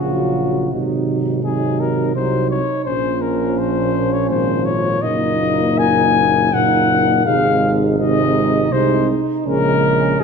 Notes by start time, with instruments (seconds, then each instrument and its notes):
0.00 tuba A#1, trombone C#3, euphonium F#3, french horn section F4, flugelhorn F#4
0.72 tuba G#1, trombone C3, euphonium F#3, french horn section D#4
1.43 trombone C3, euphonium F#3, french horn section D#4, flugelhorn G#4
1.80 flugelhorn A#4
2.15 tuba C2, trombone C3, euphonium F#3, french horn section D#4, flugelhorn C5
2.50 flugelhorn C#5
2.85 tuba A#1, trombone A#2, euphonium F3, french horn section C#4, flugelhorn C5
3.21 flugelhorn A#4
3.58 flugelhorn C5
4.12 flugelhorn C#5
4.30 tuba G#1, flugelhorn C5
4.65 flugelhorn C#5
5.02 tuba F#1, trombone A#2, euphonium A#3, french horn section D#4, flugelhorn D#5
5.78 flugelhorn G#5
6.53 trombone A#2, euphonium A#3, french horn section D#4, flugelhorn F#5
7.25 tuba G#1, trombone C3, euphonium G#3, french horn section D#4, flugelhorn F5
7.98 trombone C3, euphonium G#3, french horn section D#4, flugelhorn D#5
8.72 tuba C2, trombone C3, euphonium G#3, french horn section D#4, flugelhorn C5
9.46 tuba A#1, trombone C#3, euphonium G#3, french horn section C#4, flugelhorn A#4
10.20 tuba F#1, french horn section D#4, flugelhorn G#4